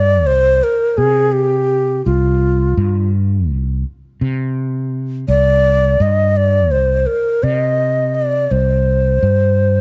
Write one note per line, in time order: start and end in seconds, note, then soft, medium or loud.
0.00 0.27 G2 loud
0.00 0.28 D5 loud
0.26 0.60 C2 medium
0.26 0.65 C5 loud
0.63 0.99 A#4 medium
0.97 2.01 C3 medium
0.97 1.34 G#4 medium
1.32 2.04 G4 medium
2.05 2.73 C2 loud
2.05 3.09 F4 medium
2.77 3.50 G2 loud
3.50 3.83 C2 medium
4.21 5.24 C3 medium
5.28 5.96 C2 medium
5.28 6.03 D5 loud
6.00 6.72 G2 loud
6.00 6.38 D#5 medium
6.37 6.73 D5 loud
6.71 7.05 C2 medium
6.71 7.08 C5 medium
7.06 7.45 A#4 medium
7.43 8.46 C3 loud
7.43 8.14 D#5 medium
8.14 8.25 D#5 medium
8.25 8.53 D5 medium
8.51 9.18 C2 medium
8.51 9.81 C5 medium
9.23 9.81 G2 loud